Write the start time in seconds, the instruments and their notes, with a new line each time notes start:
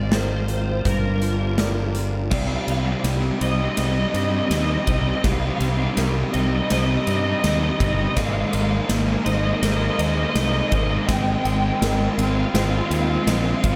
Already playing: fingered electric bass G#1, string section G#3 C4 F4, clean electric guitar G#3
0.12 clean electric guitar C4, felt piano A#4, overdriven electric guitar C5, snare, closed hi-hat
0.48 clean electric guitar C5, closed hi-hat
0.85 fingered electric bass G1, string section G3 D4 A#4, clean electric guitar G3, overdriven electric guitar A#4, felt piano C5, kick, closed hi-hat
1.22 clean electric guitar F4, closed hi-hat
1.58 clean electric guitar A#4, felt piano D5, snare, closed hi-hat
1.95 clean electric guitar F4, closed hi-hat
2.30 fingered electric bass C2, distorted electric guitar C3 G3, clean electric guitar C3, string section C3 C4 D#4, felt piano D5, overdriven electric guitar F5, kick, snare, crash
2.38 distorted electric guitar C3 G3, overdriven electric guitar F5
2.46 distorted electric guitar C3 G3, overdriven electric guitar F5
2.54 distorted electric guitar C3 G3, overdriven electric guitar F5
2.61 distorted electric guitar C3 G3, overdriven electric guitar F5
2.67 fingered electric bass C2, distorted electric guitar C3 G3, overdriven electric guitar F5, ride
2.76 distorted electric guitar C3 G3, overdriven electric guitar F5
2.84 distorted electric guitar C3 G3, overdriven electric guitar F5
2.92 distorted electric guitar C3 G3, overdriven electric guitar F5
2.98 distorted electric guitar C3 G3
3.04 fingered electric bass C2, clean electric guitar C4, snare, ride
3.08 distorted electric guitar C3 G3
3.14 distorted electric guitar C3 G3
3.22 distorted electric guitar C3 G3
3.31 distorted electric guitar C3 G3
3.38 fingered electric bass C2, distorted electric guitar C3 G3, clean electric guitar D#4, felt piano C5, ride
3.42 distorted electric guitar C3 G3, overdriven electric guitar D#5
3.50 distorted electric guitar C3, overdriven electric guitar D#5
3.54 distorted electric guitar G3, overdriven electric guitar D#5
3.62 distorted electric guitar C3 G3, overdriven electric guitar D#5
3.69 distorted electric guitar C3 G3, overdriven electric guitar D#5
3.76 fingered electric bass C2, distorted electric guitar C3 G3, clean electric guitar G4, overdriven electric guitar D#5, snare, ride
3.84 distorted electric guitar C3 G3, overdriven electric guitar D#5
3.91 distorted electric guitar C3 G3, overdriven electric guitar D#5
4.00 distorted electric guitar C3 G3, overdriven electric guitar D#5
4.08 distorted electric guitar C3 G3, overdriven electric guitar D#5
4.14 fingered electric bass G2, distorted electric guitar C3 G3, overdriven electric guitar D#5, ride
4.22 distorted electric guitar C3 G3, overdriven electric guitar D#5
4.30 distorted electric guitar C3 G3, overdriven electric guitar D#5
4.36 distorted electric guitar C3 G3, overdriven electric guitar D#5
4.45 distorted electric guitar C3 G3, overdriven electric guitar D#5
4.50 fingered electric bass D#2, distorted electric guitar C3, clean electric guitar D#4, overdriven electric guitar D#5, snare, ride
4.55 distorted electric guitar G3
4.60 distorted electric guitar C3 G3, overdriven electric guitar D#5
4.69 distorted electric guitar C3 G3, overdriven electric guitar D#5
4.76 distorted electric guitar C3 G3, overdriven electric guitar D#5
4.83 distorted electric guitar C3 G3, clean electric guitar G4, overdriven electric guitar D#5
4.87 fingered electric bass C2, felt piano C5, overdriven electric guitar D#5, kick, ride
4.92 distorted electric guitar C3 G3
4.98 distorted electric guitar C3 G3, overdriven electric guitar D#5
5.07 distorted electric guitar C3 G3, overdriven electric guitar D#5
5.14 distorted electric guitar C3 G3, overdriven electric guitar D#5
5.21 fingered electric bass C2, distorted electric guitar C3 G3, clean electric guitar C3, overdriven electric guitar D#5, kick, snare, ride
5.25 overdriven electric guitar F5
5.31 distorted electric guitar C3 G3, overdriven electric guitar F5
5.38 distorted electric guitar C3 G3, overdriven electric guitar F5
5.46 distorted electric guitar C3 G3, overdriven electric guitar F5
5.55 distorted electric guitar C3 G3, overdriven electric guitar F5
5.60 fingered electric bass C2, distorted electric guitar C3 G3, overdriven electric guitar F5, ride
5.69 distorted electric guitar C3 G3, overdriven electric guitar F5
5.77 distorted electric guitar C3 G3, overdriven electric guitar F5
5.84 distorted electric guitar C3 G3, overdriven electric guitar F5
5.92 distorted electric guitar C3 G3
5.97 fingered electric bass C2, distorted electric guitar C3, clean electric guitar C4, felt piano A#4, snare, ride
6.01 distorted electric guitar G3
6.08 distorted electric guitar C3 G3
6.15 distorted electric guitar C3 G3
6.23 distorted electric guitar C3 G3
6.30 distorted electric guitar C3 G3, clean electric guitar D#4, overdriven electric guitar D#5, ride
6.34 fingered electric bass C2
6.39 distorted electric guitar C3 G3, overdriven electric guitar D#5
6.47 distorted electric guitar C3 G3, overdriven electric guitar D#5
6.54 distorted electric guitar C3 G3, overdriven electric guitar D#5
6.61 distorted electric guitar C3 G3, overdriven electric guitar D#5
6.70 fingered electric bass C2, distorted electric guitar C3 G3, clean electric guitar G4, felt piano C5, overdriven electric guitar D#5, snare, ride
6.77 distorted electric guitar C3 G3, overdriven electric guitar D#5
6.85 distorted electric guitar C3 G3, overdriven electric guitar D#5
6.92 distorted electric guitar C3 G3, overdriven electric guitar D#5
7.01 distorted electric guitar C3 G3, overdriven electric guitar D#5
7.07 fingered electric bass G2, distorted electric guitar C3 G3, overdriven electric guitar D#5, ride
7.15 distorted electric guitar C3 G3, overdriven electric guitar D#5
7.23 distorted electric guitar C3 G3, overdriven electric guitar D#5
7.30 distorted electric guitar C3 G3, overdriven electric guitar D#5
7.38 distorted electric guitar C3 G3, overdriven electric guitar D#5
7.43 fingered electric bass D#2, distorted electric guitar C3 G3, clean electric guitar D#4, overdriven electric guitar D#5, snare, ride
7.54 distorted electric guitar C3 G3, overdriven electric guitar D#5
7.61 distorted electric guitar C3 G3, overdriven electric guitar D#5
7.68 distorted electric guitar C3 G3, overdriven electric guitar D#5
7.75 distorted electric guitar C3 G3, overdriven electric guitar D#5
7.80 fingered electric bass G1, clean electric guitar G4, overdriven electric guitar D#5, kick, ride
7.85 distorted electric guitar C3 G3
7.91 distorted electric guitar C3 G3, overdriven electric guitar D#5
7.98 distorted electric guitar C3 G3, overdriven electric guitar D#5
8.05 distorted electric guitar C3 G3, overdriven electric guitar D#5
8.14 fingered electric bass G#1, distorted electric guitar G#3 A#3, clean electric guitar G#3, string section G#3 A#4 C5, felt piano D5, overdriven electric guitar D#5 F5, kick, snare, ride
8.23 distorted electric guitar G#3 A#3, overdriven electric guitar F5
8.31 distorted electric guitar G#3 A#3, overdriven electric guitar F5
8.38 distorted electric guitar G#3 A#3, overdriven electric guitar F5
8.46 distorted electric guitar G#3 A#3, overdriven electric guitar F5
8.53 fingered electric bass G#1, distorted electric guitar G#3 A#3, overdriven electric guitar F5, ride
8.61 distorted electric guitar G#3 A#3, overdriven electric guitar F5
8.70 distorted electric guitar G#3 A#3, overdriven electric guitar F5
8.77 distorted electric guitar G#3 A#3, overdriven electric guitar F5
8.85 distorted electric guitar G#3 A#3, clean electric guitar A#3
8.89 fingered electric bass G#1, distorted electric guitar G#3, snare, ride
8.94 distorted electric guitar A#3
9.00 distorted electric guitar G#3 A#3
9.07 distorted electric guitar G#3 A#3
9.15 distorted electric guitar G#3 A#3
9.24 fingered electric bass G#1, distorted electric guitar G#3 A#3, clean electric guitar D#4, felt piano C5, overdriven electric guitar D#5, ride
9.30 distorted electric guitar G#3 A#3, overdriven electric guitar D#5
9.37 distorted electric guitar G#3 A#3, overdriven electric guitar D#5
9.46 distorted electric guitar G#3 A#3, overdriven electric guitar D#5
9.53 distorted electric guitar G#3 A#3, overdriven electric guitar D#5
9.61 fingered electric bass G#1, distorted electric guitar G#3 A#3, clean electric guitar A#4, overdriven electric guitar D#5, snare, ride
9.68 distorted electric guitar G#3 A#3, overdriven electric guitar D#5
9.76 distorted electric guitar G#3 A#3, overdriven electric guitar D#5
9.83 distorted electric guitar G#3 A#3, overdriven electric guitar D#5
9.92 distorted electric guitar G#3 A#3, overdriven electric guitar D#5
9.98 fingered electric bass D#2, distorted electric guitar G#3 A#3, clean electric guitar C5, felt piano D#5, overdriven electric guitar D#5, ride
10.06 distorted electric guitar G#3 A#3, overdriven electric guitar D#5
10.14 distorted electric guitar G#3 A#3, overdriven electric guitar D#5
10.21 distorted electric guitar G#3 A#3, overdriven electric guitar D#5
10.29 distorted electric guitar G#3 A#3, overdriven electric guitar D#5
10.35 fingered electric bass C2, distorted electric guitar G#3 A#3, clean electric guitar D#4, overdriven electric guitar D#5, snare, ride
10.43 distorted electric guitar G#3, overdriven electric guitar D#5
10.48 distorted electric guitar A#3, overdriven electric guitar D#5
10.52 distorted electric guitar G#3 A#3
10.59 distorted electric guitar G#3 A#3, overdriven electric guitar D#5
10.67 distorted electric guitar G#3 A#3, overdriven electric guitar D#5
10.72 fingered electric bass G#1, clean electric guitar A#4, felt piano C5, overdriven electric guitar D#5, kick, ride
10.76 distorted electric guitar G#3 A#3
10.83 distorted electric guitar G#3 A#3, overdriven electric guitar D#5
10.90 distorted electric guitar G#3 A#3, overdriven electric guitar D#5
10.97 distorted electric guitar G#3, overdriven electric guitar D#5
11.01 distorted electric guitar A#3
11.05 distorted electric guitar G#3 C4, clean electric guitar G#3, string section C4, overdriven electric guitar D#5 G5, kick, snare, ride
11.09 fingered electric bass G#1, string section F4
11.14 distorted electric guitar G#3 C4, overdriven electric guitar G5
11.22 distorted electric guitar G#3 C4, overdriven electric guitar G5
11.30 distorted electric guitar G#3 C4, overdriven electric guitar G5
11.39 distorted electric guitar G#3 C4, overdriven electric guitar G5
11.45 fingered electric bass G#1, distorted electric guitar G#3 C4, overdriven electric guitar G5, ride
11.53 distorted electric guitar G#3 C4, overdriven electric guitar G5
11.61 distorted electric guitar G#3 C4, overdriven electric guitar G5
11.68 distorted electric guitar G#3 C4, overdriven electric guitar G5
11.76 distorted electric guitar G#3 C4
11.81 fingered electric bass G#1, clean electric guitar G#3, distorted electric guitar G#3, felt piano A#4, snare, ride
11.86 distorted electric guitar C4
11.92 distorted electric guitar G#3 C4
12.00 distorted electric guitar G#3 C4
12.09 distorted electric guitar G#3 C4
12.15 fingered electric bass G#1, distorted electric guitar G#3 C4, clean electric guitar C4, overdriven electric guitar F5, ride
12.24 distorted electric guitar G#3 C4, overdriven electric guitar F5
12.31 distorted electric guitar G#3 C4
12.35 distorted electric guitar G#3 C4, overdriven electric guitar F5
12.43 distorted electric guitar G#3, overdriven electric guitar F5
12.48 distorted electric guitar C4
12.54 fingered electric bass G#1, distorted electric guitar G#3 C4, clean electric guitar F4, felt piano C5, overdriven electric guitar F5, snare, ride
12.61 distorted electric guitar G#3 C4, overdriven electric guitar F5
12.68 distorted electric guitar G#3 C4, overdriven electric guitar F5
12.78 distorted electric guitar G#3 C4, overdriven electric guitar F5
12.84 distorted electric guitar G#3 C4, overdriven electric guitar F5
12.90 fingered electric bass D#2, distorted electric guitar G#3 C4, clean electric guitar G#4, overdriven electric guitar F5, ride
13.00 distorted electric guitar G#3 C4, overdriven electric guitar F5
13.08 distorted electric guitar G#3 C4, overdriven electric guitar F5
13.15 distorted electric guitar G#3 C4, overdriven electric guitar F5
13.22 distorted electric guitar G#3 C4, overdriven electric guitar F5
13.27 fingered electric bass A#1, distorted electric guitar G#3 C4, clean electric guitar C4, felt piano D#5, snare, ride
13.33 overdriven electric guitar F5
13.39 distorted electric guitar G#3 C4, overdriven electric guitar F5
13.46 distorted electric guitar G#3 C4, overdriven electric guitar F5
13.54 distorted electric guitar G#3 C4, overdriven electric guitar F5
13.61 fingered electric bass G#1, distorted electric guitar G#3 C4, clean electric guitar F4, overdriven electric guitar F5, kick, ride
13.69 distorted electric guitar G#3 C4